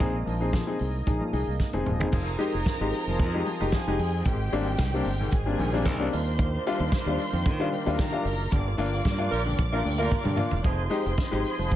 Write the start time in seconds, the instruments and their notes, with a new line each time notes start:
Already playing: tonewheel organ D#4
0.00 fingered electric bass A#1, tonewheel organ G#3 A#3, grand piano C4 D#4 G#4, kick, closed hi-hat
0.26 fingered electric bass A#1, grand piano A#2 F3, open hi-hat
0.41 grand piano C4 D#4 G#4
0.53 grand piano A#2 F3, kick, snare, closed hi-hat
0.67 grand piano C4 D#4 G#4
0.79 fingered electric bass C2, grand piano D#4 G#4, open hi-hat
1.07 fingered electric bass A#1, grand piano D#4 G#4, kick, closed hi-hat
1.20 grand piano A#2 F3
1.33 fingered electric bass C2, grand piano D#4 G#4, open hi-hat
1.47 fingered electric bass C2
1.60 kick, snare
1.73 fingered electric bass F1, grand piano C4 D#4 G#4, high tom
1.86 fingered electric bass D#1, grand piano A#2 F3, mid tom
1.99 fingered electric bass E1, grand piano C4 D#4 G#4, floor tom
2.12 fingered electric bass F1, grand piano F3, tonewheel organ F3 C4 D#4 G#4, string section A#4 A#5, kick, crash
2.38 grand piano G#3 D#4 G4, open hi-hat
2.54 fingered electric bass F1, grand piano D#4 G4
2.66 kick, snare, closed hi-hat
2.81 fingered electric bass G#1, grand piano G#3 D#4 G4
2.92 open hi-hat
3.07 fingered electric bass F1, grand piano F3
3.19 fingered electric bass F2, kick, closed hi-hat
3.34 grand piano G#3 D#4 G4
3.46 grand piano F3, open hi-hat
3.60 fingered electric bass F1, grand piano G#3 D#4 G4
3.72 grand piano F3, string section G#4 G#5, kick, snare, closed hi-hat
3.87 fingered electric bass F1, grand piano G#3 D#4 G4
3.99 fingered electric bass F2, grand piano D#4 G4, open hi-hat
4.25 fingered electric bass G#1, grand piano G#2 D#3, string section G4 G5, kick, closed hi-hat
4.53 fingered electric bass G#1, grand piano G3 A#3 C4 D4, open hi-hat
4.67 grand piano C4 D4
4.78 fingered electric bass C2, kick, snare, closed hi-hat
4.94 grand piano G3 A#3 C4 D4
5.05 fingered electric bass G1, open hi-hat
5.20 grand piano G#2 D#3
5.31 fingered electric bass G#1, string section G#4 G#5, kick, closed hi-hat
5.46 grand piano G3 A#3 C4 D4
5.59 fingered electric bass A#1, grand piano G#2 D#3, open hi-hat
5.73 grand piano G3 A#3 C4 D4
5.85 fingered electric bass C2, grand piano G#2 D#3, kick, snare, closed hi-hat
5.99 grand piano G3 A#3 C4 D4
6.12 fingered electric bass D#2, tonewheel organ D#3 A#3 D4 F4, grand piano D4 F4, string section C5 C6, open hi-hat
6.39 grand piano D#3, kick, closed hi-hat
6.67 grand piano G3 D4 F4, open hi-hat
6.80 fingered electric bass D#2, grand piano D4 F4
6.92 kick, snare, closed hi-hat
7.06 fingered electric bass D#2, grand piano G3 D4 F4
7.18 open hi-hat
7.33 fingered electric bass F2, grand piano D#3
7.45 fingered electric bass D#3, kick, closed hi-hat
7.60 grand piano G3 D4 F4
7.72 grand piano D#3, open hi-hat
7.86 fingered electric bass D#2, grand piano G3 D4 F4
7.98 grand piano D#3, string section A#4 A#5, kick, snare, closed hi-hat
8.12 grand piano G3 D4 F4
8.25 fingered electric bass F#1, grand piano D4 F4, open hi-hat
8.51 fingered electric bass G1, grand piano G2 D3, string section D5 D6, kick, closed hi-hat
8.78 fingered electric bass G1, grand piano A#3 D4 F4, open hi-hat
8.93 grand piano D4 F4
9.05 fingered electric bass G2, kick, snare, closed hi-hat
9.18 grand piano A#3 D4 F4
9.32 fingered electric bass A#1, horn section G3 F4 A#4, open hi-hat
9.46 grand piano G2 D3
9.59 fingered electric bass A#1, kick, closed hi-hat
9.72 horn section G3 F4 A#4, grand piano A#3 D4 F4
9.84 fingered electric bass D2, grand piano G2 D3, open hi-hat
9.98 horn section G3 F4 A#4, grand piano A#3 D4 F4
10.10 grand piano D4 F4, kick, high tom
10.24 grand piano G2 D3, fingered electric bass G2, mid tom
10.36 grand piano A#3 D4 F4, mid tom
10.51 fingered electric bass E1, floor tom
10.63 fingered electric bass F1, grand piano F3, tonewheel organ F3 C4 D#4 G#4, string section C5 C6, kick, closed hi-hat
10.90 grand piano G#3 D#4 G4, open hi-hat
11.06 fingered electric bass F1, grand piano D#4 G4
11.18 kick, snare, closed hi-hat
11.31 fingered electric bass G#1, grand piano G#3 D#4 G4
11.44 open hi-hat
11.59 fingered electric bass F1, grand piano F3
11.71 fingered electric bass F2, kick, closed hi-hat